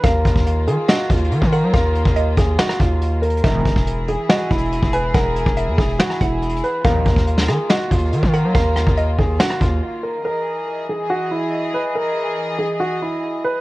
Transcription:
0.03 808-style bass D#2, string section D#3 A#3 F4, grand piano A#4, synth pluck F5, kick, closed hi-hat
0.25 808-style bass D#2, kick, closed hi-hat
0.36 kick
0.46 closed hi-hat
0.67 808-style bass D#3, grand piano G#4, closed hi-hat
0.88 grand piano F#4, synth pluck D#5, snare
1.10 808-style bass D#2, grand piano F4, kick, closed hi-hat
1.17 closed hi-hat
1.24 closed hi-hat
1.31 808-style bass D#3, closed hi-hat
1.42 808-style bass D#3, kick
1.52 grand piano A#4, synth pluck F#5, closed hi-hat
1.63 808-style bass F#3
1.73 808-style bass D#2, grand piano A#4, synth pluck F5, kick, closed hi-hat
1.95 closed hi-hat
2.06 808-style bass D#2, kick
2.16 synth pluck D#5, closed hi-hat
2.37 808-style bass D#2, grand piano G#4, kick, closed hi-hat
2.59 grand piano F#4, snare
2.70 cross-stick
2.80 808-style bass D#2, grand piano F4, kick, closed hi-hat
3.02 closed hi-hat
3.22 grand piano A#4, closed hi-hat
3.30 closed hi-hat
3.37 closed hi-hat
3.44 808-style bass E1, analog polysynth G#2 B2 D#3, string section E3 E4 G#4, grand piano A#4, synth pluck E5, kick, closed hi-hat
3.65 808-style bass E1, kick, closed hi-hat
3.76 kick
3.87 closed hi-hat
4.08 grand piano G#4, closed hi-hat
4.29 grand piano F#4, synth pluck D#5, snare
4.50 808-style bass E1, grand piano E4, kick, closed hi-hat
4.58 closed hi-hat
4.65 closed hi-hat
4.72 closed hi-hat
4.82 808-style bass E1, kick
4.93 grand piano B4, synth pluck G#5, closed hi-hat
5.14 808-style bass E1, grand piano A#4, synth pluck F#5, kick, closed hi-hat
5.36 closed hi-hat
5.46 808-style bass E1, kick
5.57 synth pluck E5, closed hi-hat
5.68 808-style bass E2
5.78 808-style bass E1, grand piano G#4, kick, open hi-hat
5.99 grand piano F#4, snare, hi-hat pedal
6.10 cross-stick
6.21 808-style bass E1, grand piano E4, synth pluck F#5, kick, closed hi-hat
6.42 closed hi-hat
6.49 closed hi-hat
6.56 closed hi-hat
6.63 grand piano B4, closed hi-hat
6.84 808-style bass D#2, analog polysynth F2 A#2 D#3, string section D#3 A#3 F4, grand piano A#4, synth pluck F5, kick, closed hi-hat
7.06 808-style bass D#2, kick, closed hi-hat
7.16 kick
7.27 closed hi-hat
7.38 snare
7.48 808-style bass D#3, grand piano G#4, cross-stick, closed hi-hat
7.69 grand piano F#4, synth pluck D#5, snare
7.91 808-style bass D#2, grand piano F4, kick, closed hi-hat
7.98 closed hi-hat
8.05 closed hi-hat
8.12 808-style bass D#3, closed hi-hat
8.23 808-style bass D#3, kick
8.33 grand piano A#4, synth pluck F#5, closed hi-hat
8.44 808-style bass F#3
8.54 808-style bass D#2, grand piano A#4, synth pluck F5, kick, closed hi-hat
8.76 cross-stick, closed hi-hat
8.87 808-style bass D#2, kick
8.97 synth pluck D#5, closed hi-hat
9.18 808-style bass D#2, grand piano G#4, kick, open hi-hat
9.40 grand piano F#4, snare, hi-hat pedal
9.50 cross-stick
9.61 808-style bass D#2, grand piano F4, kick, closed hi-hat
10.03 grand piano A#4
10.25 string section E3 G#4 D#5, grand piano A#4
10.89 grand piano G#4
11.10 grand piano F#4
11.31 grand piano E4
11.74 grand piano B4
11.95 grand piano A#4
12.59 grand piano G#4
12.80 grand piano F#4
13.02 grand piano E4
13.44 grand piano B4

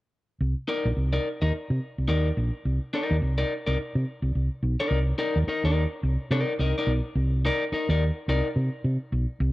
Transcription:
0.41 fingered electric bass C2
0.68 clean electric guitar D#4 A#4 D5
0.85 fingered electric bass A#1
0.97 fingered electric bass C2
1.13 clean electric guitar D#4 A#4 D5
1.42 fingered electric bass D#2, clean electric guitar D#4 A#4 D#5
1.53 muted fingered electric bass stroke
1.70 fingered electric bass C3
1.98 fingered electric bass C2
2.08 fingered electric bass D#2, clean electric guitar D#4 A#4 D5
2.37 fingered electric bass A#1
2.65 fingered electric bass C2
2.94 clean electric guitar D#4 A#4 D5
3.11 fingered electric bass D#2
3.22 fingered electric bass C2
3.38 clean electric guitar D#4 A#4 D5
3.66 fingered electric bass C2, clean electric guitar D#4 A#4 D5
3.95 fingered electric bass C3
4.22 fingered electric bass C2
4.35 fingered electric bass C2
4.63 fingered electric bass B1
4.80 clean electric guitar D#4 A#4 D5
4.91 fingered electric bass C2
5.18 clean electric guitar D#4 A#4 D5
5.36 fingered electric bass D#2
5.47 clean electric guitar D#4 A#4 D#5, muted fingered electric bass stroke
5.64 fingered electric bass D#2, clean electric guitar D#4 A#4 D5
6.03 fingered electric bass C2
6.31 fingered electric bass C3, clean electric guitar D#4 A#4 D5
6.59 fingered electric bass C2, clean electric guitar D#4 A#4 D#5
6.78 clean electric guitar D#4 A#4 D5
6.87 fingered electric bass B1
7.15 fingered electric bass C2
7.45 clean electric guitar D#4 A#4 D5
7.72 clean electric guitar D#4 A#4 D#5, muted fingered electric bass stroke
7.89 fingered electric bass D#2, clean electric guitar D#4 A#4 D5
8.28 fingered electric bass C2, clean electric guitar D#4 A#4 D5
8.56 fingered electric bass C3
8.84 fingered electric bass C3
9.12 fingered electric bass B1
9.40 fingered electric bass C2

